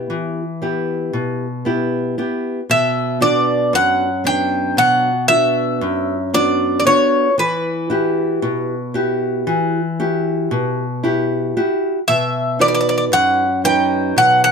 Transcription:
Already playing: B3 E4 G4
0.10 E3
0.62 B3 E4 G4
1.13 B2
1.65 B3 E4 G4
2.18 B3 E4 G4
2.70 B2 E5
3.21 B3 D4 F#4 D5
3.73 F#2 F#5
4.24 F#3 B3 D4 G5
4.77 B2 F#5
5.28 B3 D4 F#4 E5
5.81 F#2
6.34 B3 D4 F#4 D5
6.80 D5
6.85 B3 D4 F#4 C#5
7.38 E3 B4
7.90 E4 F#4 G4
8.42 B2
8.94 E4 F#4 G4
9.47 E3
10.00 E4 F#4 G4
10.51 B2
11.03 E4 F#4 G4
11.57 E4 F#4 G4
12.08 B2 E5
12.59 D#4 F#4 B4 D5
12.68 D5
12.74 D5
12.81 D5
12.89 D5
12.98 D5
13.12 F#2 F#5
13.64 F#3 D#4 B4 G5
14.16 B2 F#5
14.44 F#5

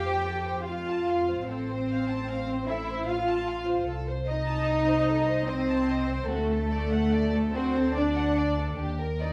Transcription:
Already playing: F2 G4 G5
0.06 C5
0.26 A4
0.47 C5
0.65 F4 F5
0.88 A5
1.09 F5
1.29 C5
1.47 A1 C4 A4 C5
1.69 C5
1.90 F5
2.08 A5
2.29 F5
2.50 C5
2.67 E4 A4 E5
2.88 C5
3.08 F4 F5
3.29 A5
3.47 F5
3.67 C5
3.87 C2 A4
4.07 C5
4.26 D#4 D#5
4.46 A5
4.66 D#5
4.87 C5
5.07 A4
5.28 C5
5.47 C4 C5 D#5
5.69 A5
5.89 D#5
6.10 C5
6.29 D2 A3 F#4 A4
6.51 A4
6.71 D5
6.92 F#5
7.12 D5
7.35 A4
7.55 C4 F#4 C5
7.77 A4
7.96 D4 D5
8.16 F#5
8.37 D5
8.58 A4
8.79 D#2 G4
8.99 A#4
9.22 D#4 D5 D#5

